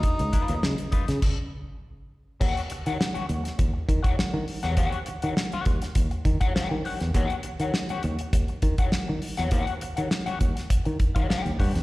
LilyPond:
<<
  \new Staff \with { instrumentName = "Clean electric guitar" } { \time 4/4 \key des \lydian \tempo 4 = 101 r8 <ees' f' ces''>16 r8. <ees' f' ces''>16 r2 r16 | <g' des'' fis''>16 r8 <g' des'' fis''>16 r16 <g' des'' fis''>16 r4 r16 <g' des'' fis''>16 r8. <g' des'' fis''>16 | <g' des'' fis''>16 r8 <g' des'' fis''>16 r16 <g' des'' fis''>16 r4 r16 <g' des'' fis''>16 <g' des'' fis''>16 r16 <g' des'' fis''>16 r16 | <g' des'' fis''>16 r8 <g' des'' fis''>16 r16 <g' des'' fis''>16 r4 r16 <g' des'' fis''>16 r8. <g' des'' fis''>16 |
<g' des'' fis''>16 r8 <g' des'' fis''>16 r16 <g' des'' fis''>16 r4 r16 <g' des'' fis''>16 <g' des'' fis''>16 r16 <g' des'' fis''>16 r16 | }
  \new Staff \with { instrumentName = "Tenor saxophone" } { \time 4/4 \key des \lydian ees'4~ ees'16 r2 r8. | r1 | r1 | r1 |
r1 | }
  \new Staff \with { instrumentName = "Fingered electric bass" } { \clef bass \time 4/4 \key des \lydian r16 des,16 r16 ees,16 des16 r8 des16 r2 | ees,16 r8 ees16 r8 ees,16 r16 ees,16 r16 ees16 r8 ees16 r16 fes,16 | ees,16 r8 ees16 r8 ees,16 r16 ees,16 r16 ees16 r8 ees16 r16 fes,16 | ees,16 r8 ees16 r8 ees,16 r16 ees,16 r16 ees16 r8 ees16 r16 fes,16 |
ees,16 r8 ees16 r8 ees,16 r8 ees16 r16 ees16 r16 ees,16 g,16 fes,16 | }
  \new DrumStaff \with { instrumentName = "Drums" } \drummode { \time 4/4 <hh bd>16 hh16 <hh bd>16 hh16 sn16 hh16 <hh bd>16 <hh sn>16 <cymc bd>4 r4 | <cymc bd>16 hh16 hh16 hh16 sn16 hh16 hh16 <hh sn>16 <hh bd>8 <hh bd>16 <hh bd>16 sn8 hho16 <hh sn>16 | <hh bd>16 hh16 hh16 hh16 sn16 hh16 <hh bd>16 <hh sn>16 <hh bd>16 hh16 <hh bd>16 <hh bd>16 sn8 hho16 <hh sn>16 | <hh bd>16 hh16 hh16 hh16 sn16 hh16 hh16 hh16 <hh bd>16 hh16 <hh bd>16 <hh bd>16 sn8 hho16 <hh sn>16 |
<hh bd>16 hh16 hh16 hh16 sn16 hh16 <hh bd>16 <hh sn>16 <hh bd>16 hh16 <hh bd>16 <hh bd>16 sn16 hh16 <hho bd>16 <hh sn>16 | }
>>